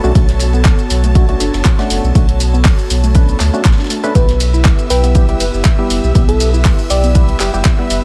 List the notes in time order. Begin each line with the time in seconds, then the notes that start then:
Already playing: B3 F#4 A4 C#5 A5
0.04 B1 A3 C#4 D4 F#4, shaker
0.15 B1 A3 C#4 D4 F#4, kick, closed hi-hat, ride, shaker
0.29 snare, closed hi-hat
0.39 open hi-hat, ride, shaker
0.53 B3, ride, shaker
0.65 kick, snare, clap, closed hi-hat, ride, shaker
0.79 closed hi-hat, shaker
0.90 B1, snare, open hi-hat, ride, shaker
1.04 A3, closed hi-hat, shaker
1.15 A3 C#4 D4 F#4, kick, closed hi-hat, ride, shaker
1.29 A3 C#4 D4 F#4, closed hi-hat, ride
1.40 F#1 D4, snare, open hi-hat, ride, shaker
1.54 F#1, snare, ride, shaker
1.64 F#4, kick, snare, clap, closed hi-hat, ride, shaker
1.79 A3 C#4 D4 F#4, snare, ride
1.90 F#1, open hi-hat, ride, shaker
2.04 B1, shaker
2.15 B1 A3 C#4 D4 F#4, kick, closed hi-hat, ride, shaker
2.29 closed hi-hat
2.40 open hi-hat, ride, shaker
2.54 B3, shaker
2.65 kick, snare, clap, closed hi-hat, open hi-hat, shaker
2.79 closed hi-hat, shaker
2.90 B1, open hi-hat, ride, shaker
3.04 A3, closed hi-hat, shaker
3.15 A3 C#4 D4 B4, kick, closed hi-hat, ride, shaker
3.29 closed hi-hat, shaker
3.40 D2 A3, clap, open hi-hat, ride, shaker
3.54 A3 C#4 D4 F#4, shaker
3.65 A1 A3, kick, snare, clap, closed hi-hat, ride, shaker
3.72 snare, ride
3.78 D4, snare, ride
3.84 snare, ride
3.90 A3, open hi-hat, ride, shaker
4.04 A3 C#4 D4 A4 B4, closed hi-hat, shaker
4.15 B1 G3 B3 E4 G4 B4 E5, kick, closed hi-hat, ride, shaker
4.29 snare, closed hi-hat
4.40 open hi-hat, ride, shaker
4.54 E4, ride, shaker
4.65 kick, snare, clap, closed hi-hat, ride, shaker
4.79 closed hi-hat, shaker
4.90 B1 B4 G5, snare, open hi-hat, ride, shaker
5.04 B3, closed hi-hat, shaker
5.15 G3 B3 E4 G4, kick, closed hi-hat, ride, shaker
5.29 G3 B3 E4 G4, closed hi-hat, ride
5.40 F#1 B4, open hi-hat, ride, shaker
5.54 F#1, shaker
5.65 E5, kick, snare, clap, closed hi-hat, ride, shaker
5.79 G3 B3 E4 G4
5.90 F#1, open hi-hat, ride, shaker
6.04 B1, shaker
6.15 B1 G3 B3 E4 G4, kick, closed hi-hat, ride, shaker
6.29 A4, closed hi-hat
6.40 open hi-hat, ride, shaker
6.54 E4, shaker
6.65 kick, snare, clap, closed hi-hat, open hi-hat, shaker
6.79 closed hi-hat, shaker
6.90 B1 D5 G5, open hi-hat, ride, shaker
7.04 B3, closed hi-hat, shaker
7.15 G3 B3 E4 B4, kick, closed hi-hat, ride, shaker
7.29 closed hi-hat
7.39 F#1 G3 B3 E4 G4 B4, clap, open hi-hat, ride, shaker
7.54 F#1 G3 B3 E4 G4, shaker
7.65 E5, kick, snare, clap, closed hi-hat, ride, shaker
7.79 G3 B3 E4 B4
7.90 F#1, open hi-hat, ride, shaker